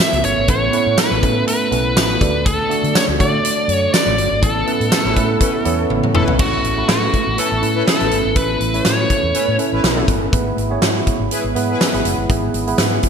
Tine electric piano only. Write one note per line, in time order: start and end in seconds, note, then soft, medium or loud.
0.00 0.49 A2 medium
0.00 0.48 B3 medium
0.00 0.48 C#4 medium
0.00 0.49 E4 medium
0.00 0.49 A4 medium
0.00 2.23 A#4 medium
0.00 0.50 B4 loud
0.48 1.19 A2 medium
0.48 0.70 B3 medium
0.48 0.70 C#4 medium
0.48 0.71 E4 medium
0.48 0.71 A4 medium
0.48 0.71 B4 medium
0.72 1.16 B3 medium
0.72 1.17 C#4 medium
0.72 1.17 E4 medium
0.72 1.17 A4 medium
0.72 1.17 B4 medium
1.22 1.66 B3 medium
1.22 1.66 C#4 medium
1.22 1.66 E4 medium
1.22 1.66 A4 medium
1.22 1.66 B4 medium
1.71 2.21 B3 medium
1.71 2.21 C#4 medium
1.71 2.21 E4 medium
1.71 2.20 A4 medium
1.71 2.21 B4 medium
2.20 2.91 D3 medium
2.20 2.64 A3 medium
2.20 2.64 D4 medium
2.20 2.64 F#4 medium
2.20 2.64 A4 medium
2.20 2.64 D5 medium
2.69 3.13 A3 medium
2.69 3.13 D4 medium
2.69 3.13 F#4 medium
2.69 3.13 A4 medium
2.69 3.14 D5 medium
3.19 4.05 A3 medium
3.19 4.05 D4 medium
3.19 4.05 F#4 medium
3.19 4.06 A4 medium
3.19 3.26 C#5 medium
3.25 4.09 D5 medium
4.41 5.12 A2 medium
4.41 4.63 B3 medium
4.41 4.64 C#4 medium
4.41 4.64 E4 medium
4.41 4.64 A4 medium
4.41 4.64 B4 medium
4.67 5.10 B3 medium
4.67 5.10 C#4 medium
4.67 5.10 E4 medium
4.67 5.11 A4 medium
4.67 5.11 B4 medium
5.16 5.59 B3 medium
5.16 5.60 C#4 medium
5.16 5.60 E4 medium
5.16 5.60 A4 medium
5.16 5.60 B4 loud
5.65 6.30 B3 medium
5.65 6.30 C#4 medium
5.65 6.30 E4 medium
5.65 6.30 A4 medium
5.65 6.30 C#5 loud
6.39 7.09 A2 medium
6.39 6.72 C#4 medium
6.39 6.72 E4 medium
6.39 6.72 A4 medium
6.39 6.72 B4 medium
6.77 7.52 C#4 medium
6.77 7.52 E4 medium
6.77 7.52 A4 medium
6.77 7.52 B4 medium
7.61 7.94 C#4 medium
7.61 7.95 E4 medium
7.61 7.95 A4 medium
7.61 7.95 B4 medium
8.00 8.31 C#4 medium
8.00 8.31 E4 medium
8.00 8.31 A4 medium
8.00 8.32 B4 medium
8.36 9.06 A2 medium
8.36 8.68 C#4 medium
8.36 8.69 E4 medium
8.36 8.69 A4 medium
8.36 8.69 B4 medium
8.74 9.48 C#4 medium
8.74 9.48 E4 medium
8.74 9.49 A4 medium
8.74 9.49 C#5 medium
9.58 9.91 C#4 medium
9.58 9.92 E4 medium
9.58 9.92 A4 medium
9.58 9.92 B4 loud
9.97 10.28 C#4 medium
9.97 10.28 E4 medium
9.97 10.28 A4 medium
9.97 10.28 B4 medium
10.32 11.03 G#2 medium
10.32 10.65 B3 medium
10.32 10.65 E4 medium
10.32 10.66 G#4 medium
10.32 10.66 B4 medium
10.70 11.45 B3 medium
10.70 11.45 E4 medium
10.70 11.45 G#4 medium
10.70 11.46 C#5 loud
11.55 11.88 B3 medium
11.55 11.88 E4 medium
11.55 11.89 G#4 medium
11.55 11.89 B4 loud
11.93 12.25 B3 medium
11.93 12.25 E4 medium
11.93 12.25 G#4 medium
11.93 12.25 B4 loud
12.30 13.00 G#2 medium
12.30 12.62 B3 medium
12.30 12.62 E4 medium
12.30 12.63 G#4 medium
12.30 12.63 B4 medium
12.67 13.09 B3 medium
12.67 13.09 E4 medium
12.67 13.09 G#4 medium
12.67 13.09 B4 medium